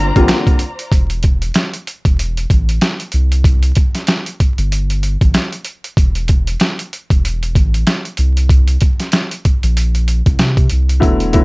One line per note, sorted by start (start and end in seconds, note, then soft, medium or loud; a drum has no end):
0.00 0.12 G1 medium
0.00 0.89 F4 medium
0.00 0.89 C5 medium
0.00 0.87 D5 medium
0.00 0.89 A#5 medium
0.16 0.28 A1 medium
0.16 0.57 D3 medium
0.16 0.57 G3 medium
0.16 0.57 A#3 medium
0.16 0.57 C4 medium
0.16 0.57 F4 loud
0.16 kick loud
0.16 closed hi-hat medium
0.28 finger snap medium
0.28 snare loud
0.28 closed hi-hat loud
0.47 kick medium
0.47 closed hi-hat soft
0.59 closed hi-hat medium
0.79 closed hi-hat medium
0.92 1.51 E1 loud
0.92 kick loud
0.92 closed hi-hat medium
1.10 closed hi-hat medium
1.23 kick medium
1.23 closed hi-hat medium
1.42 closed hi-hat medium
1.54 snare loud
1.54 closed hi-hat loud
1.74 closed hi-hat medium
1.87 closed hi-hat medium
2.05 2.46 E1 loud
2.05 kick loud
2.05 closed hi-hat medium
2.19 closed hi-hat loud
2.37 closed hi-hat medium
2.50 2.79 A1 medium
2.50 kick medium
2.50 closed hi-hat medium
2.69 closed hi-hat medium
2.81 snare loud
2.81 closed hi-hat medium
3.00 closed hi-hat soft
3.12 3.72 C2 loud
3.12 closed hi-hat medium
3.32 closed hi-hat medium
3.44 kick loud
3.44 closed hi-hat medium
3.63 closed hi-hat medium
3.75 kick medium
3.75 closed hi-hat medium
3.95 snare soft
3.95 closed hi-hat medium
4.07 snare loud
4.07 closed hi-hat loud
4.26 closed hi-hat medium
4.40 kick medium
4.40 closed hi-hat medium
4.58 5.17 G1 medium
4.58 closed hi-hat medium
4.72 closed hi-hat loud
4.90 closed hi-hat medium
5.03 closed hi-hat medium
5.21 5.33 A1 medium
5.21 kick medium
5.21 closed hi-hat medium
5.34 snare loud
5.34 closed hi-hat loud
5.52 closed hi-hat soft
5.64 closed hi-hat medium
5.84 closed hi-hat medium
5.97 6.56 E1 loud
5.97 kick loud
5.97 closed hi-hat medium
6.15 closed hi-hat medium
6.28 kick medium
6.28 closed hi-hat medium
6.47 closed hi-hat medium
6.60 snare loud
6.60 closed hi-hat loud
6.79 closed hi-hat medium
6.93 closed hi-hat medium
7.10 7.57 E1 medium
7.10 kick loud
7.10 closed hi-hat medium
7.25 closed hi-hat loud
7.43 closed hi-hat medium
7.55 7.84 A1 loud
7.55 kick medium
7.55 closed hi-hat medium
7.74 closed hi-hat medium
7.87 snare loud
7.87 closed hi-hat loud
8.05 closed hi-hat soft
8.17 8.77 C2 loud
8.17 closed hi-hat medium
8.37 closed hi-hat medium
8.49 kick loud
8.49 closed hi-hat medium
8.68 closed hi-hat medium
8.81 kick medium
8.81 closed hi-hat medium
9.00 snare soft
9.00 closed hi-hat medium
9.12 snare loud
9.12 closed hi-hat loud
9.31 closed hi-hat medium
9.45 kick medium
9.45 closed hi-hat medium
9.63 10.22 A#1 medium
9.63 closed hi-hat medium
9.77 closed hi-hat loud
9.95 closed hi-hat medium
10.08 closed hi-hat medium
10.26 10.38 C2 loud
10.26 kick medium
10.26 closed hi-hat medium
10.39 10.68 C3 loud
10.39 snare loud
10.39 closed hi-hat medium
10.57 kick medium
10.57 closed hi-hat soft
10.70 11.00 C2 medium
10.70 closed hi-hat medium
10.89 closed hi-hat medium
11.00 11.44 E1 loud
11.00 11.30 D3 loud
11.00 11.31 F#3 medium
11.00 11.31 A3 medium
11.00 11.31 B3 medium
11.00 11.31 E4 loud
11.00 kick loud
11.00 closed hi-hat medium
11.20 closed hi-hat medium
11.33 11.44 D3 medium
11.33 11.44 F#3 medium
11.33 11.44 A3 medium
11.33 11.44 B3 medium
11.33 11.44 E4 loud
11.33 kick medium
11.33 closed hi-hat medium